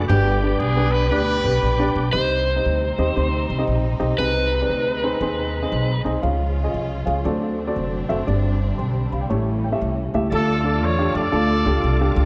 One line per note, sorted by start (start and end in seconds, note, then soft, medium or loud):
0.08 0.53 G1 loud
0.08 0.90 G2 medium
0.08 2.09 B3 medium
0.08 1.07 B3 medium
0.08 2.09 D4 medium
0.08 1.07 D4 medium
0.08 0.31 D4 medium
0.08 0.17 F#4 medium
0.08 0.40 G4 medium
0.08 0.31 G4 medium
0.08 0.31 B4 medium
0.14 2.12 G4 medium
0.42 0.60 D4 medium
0.42 0.59 G4 medium
0.42 0.61 G4 medium
0.42 0.61 B4 medium
0.60 1.11 B1 medium
0.60 0.93 G#4 loud
0.77 1.02 D4 medium
0.77 1.02 G4 medium
0.77 1.02 B4 medium
0.92 1.09 B4 loud
1.10 1.39 D2 medium
1.10 2.10 D4 medium
1.10 1.33 D4 medium
1.10 2.10 G4 medium
1.10 1.33 G4 medium
1.10 1.91 B4 loud
1.10 1.33 D5 medium
1.44 1.60 B1 medium
1.44 1.63 D4 medium
1.44 1.63 G4 medium
1.44 1.62 B4 medium
1.62 1.90 A#1 medium
1.79 2.04 D4 medium
1.79 2.05 G4 medium
1.79 2.05 D5 medium
1.96 2.11 B1 medium
2.13 2.57 C2 loud
2.13 2.94 C3 medium
2.13 6.19 C3 medium
2.13 4.16 G3 medium
2.13 2.46 C4 medium
2.13 4.16 C4 medium
2.13 2.46 D#4 medium
2.13 6.19 D#4 medium
2.13 2.46 G4 soft
2.13 3.63 C5 medium
2.13 2.46 D#5 medium
2.56 2.81 C4 medium
2.56 2.81 D#4 medium
2.56 2.81 G4 soft
2.56 2.81 D#5 medium
2.65 2.93 D2 medium
2.98 3.14 D#2 medium
2.98 3.10 C4 medium
2.98 3.10 D#4 medium
2.98 3.10 G4 medium
2.98 3.10 D#5 medium
3.16 3.45 D2 medium
3.16 3.48 C4 medium
3.16 3.49 D#4 medium
3.16 3.49 G4 medium
3.16 3.49 C5 medium
3.50 3.65 C2 medium
3.58 3.83 C4 medium
3.58 3.83 D#4 medium
3.58 3.83 G4 medium
3.58 3.83 D#5 medium
3.68 3.96 A#1 medium
4.00 4.16 B1 medium
4.00 4.12 C4 medium
4.00 4.12 D#4 medium
4.00 4.12 G4 medium
4.00 4.12 D#5 medium
4.18 4.62 C2 medium
4.18 4.99 C3 medium
4.18 7.22 G#3 medium
4.18 6.21 C4 medium
4.18 4.51 C4 medium
4.18 4.51 D#4 medium
4.18 4.51 G#4 medium
4.18 6.01 B4 medium
4.18 4.51 D#5 medium
4.61 4.86 C4 medium
4.61 4.86 D#4 medium
4.61 4.86 G#4 medium
4.61 4.86 D5 medium
4.69 5.13 D2 medium
5.03 5.15 C4 medium
5.03 5.15 D#4 medium
5.03 5.15 G#4 medium
5.03 5.15 C5 medium
5.21 5.64 D#2 medium
5.21 5.54 C4 medium
5.21 5.54 D#4 medium
5.21 5.54 G#4 medium
5.21 5.54 C5 medium
5.62 5.88 C4 medium
5.62 5.88 D#4 medium
5.62 5.88 G#4 medium
5.62 5.88 D#5 medium
5.72 6.00 B1 medium
6.04 6.21 C2 medium
6.04 6.17 C4 medium
6.04 6.17 D#4 medium
6.04 6.17 G#4 medium
6.04 6.17 D#5 medium
6.22 6.67 C#2 loud
6.22 7.03 C#3 medium
6.22 7.24 F3 medium
6.22 6.55 C#4 medium
6.22 7.24 C#4 medium
6.22 6.55 F4 medium
6.22 7.24 F4 medium
6.22 6.55 G#4 medium
6.22 6.55 F5 medium
6.63 6.89 C#4 medium
6.63 6.89 F4 medium
6.63 6.89 G#4 medium
6.63 6.90 D#5 medium
6.74 7.02 C2 medium
7.06 7.23 C#2 medium
7.06 7.18 C#4 medium
7.06 7.18 F4 medium
7.06 7.18 G#4 medium
7.06 7.19 F5 medium
7.24 7.69 D2 medium
7.24 8.05 D3 medium
7.24 8.27 F#3 medium
7.24 8.27 A3 medium
7.24 7.57 C4 medium
7.24 9.28 C4 medium
7.24 9.28 D4 medium
7.24 7.57 F#4 medium
7.24 7.57 A4 medium
7.24 7.58 D5 medium
7.67 7.92 C4 medium
7.67 7.92 F#4 medium
7.67 7.92 A4 medium
7.67 7.92 D5 medium
7.76 8.04 F1 medium
8.09 8.25 F#1 medium
8.09 8.21 C4 medium
8.09 8.21 F#4 medium
8.09 8.21 A4 medium
8.09 8.21 E5 medium
8.27 8.71 G1 medium
8.27 9.07 G2 medium
8.27 9.28 D3 medium
8.27 10.29 G3 medium
8.27 8.60 C4 medium
8.27 8.59 D4 medium
8.27 8.60 G4 medium
8.27 8.60 D5 medium
8.78 9.07 B1 medium
8.78 9.10 G5 soft
8.78 9.10 C6 medium
9.12 9.27 C2 medium
9.12 9.21 F5 medium
9.12 9.20 B5 medium
9.21 9.46 D5 soft
9.21 9.45 G5 medium
9.28 9.73 A1 medium
9.28 10.09 A2 medium
9.28 10.30 E3 medium
9.28 10.30 A3 medium
9.28 9.62 A3 medium
9.28 10.30 C#4 medium
9.28 9.62 E4 medium
9.28 9.62 G4 medium
9.28 9.62 C#5 medium
9.64 9.80 G5 medium
9.72 9.96 A3 medium
9.72 9.96 E4 medium
9.72 9.96 G4 medium
9.72 9.80 E5 medium
9.81 10.09 C2 medium
9.81 10.13 E5 medium
10.14 10.29 C#2 medium
10.14 10.25 A3 medium
10.14 10.25 E4 medium
10.14 10.25 G4 medium
10.14 10.26 E5 medium
10.30 10.82 D2 loud
10.30 11.11 D3 medium
10.30 12.25 A3 medium
10.30 12.25 D4 medium
10.30 11.29 D4 medium
10.30 10.53 D4 medium
10.30 10.39 E4 medium
10.30 11.15 F4 medium
10.30 10.53 F4 medium
10.30 10.53 A4 medium
10.30 10.63 A4 medium
10.37 12.25 F4 medium
10.64 10.82 D4 medium
10.64 10.82 F4 medium
10.64 10.82 A4 medium
10.82 11.10 E2 loud
10.82 11.15 C#5 loud
10.98 11.23 D4 medium
10.98 11.23 F4 medium
10.98 11.24 G4 medium
11.15 11.30 F2 medium
11.15 12.13 F4 medium
11.15 12.13 A4 medium
11.15 12.13 D5 loud
11.32 11.61 D2 medium
11.32 11.54 D4 medium
11.32 11.54 F4 medium
11.32 11.54 A4 medium
11.65 11.81 C#2 medium
11.65 11.83 D4 medium
11.65 11.83 F4 medium
11.65 11.83 G4 medium
11.84 12.11 C2 medium
12.01 12.25 D4 medium
12.01 12.25 F4 medium
12.01 12.25 G4 medium
12.16 12.25 C#2 loud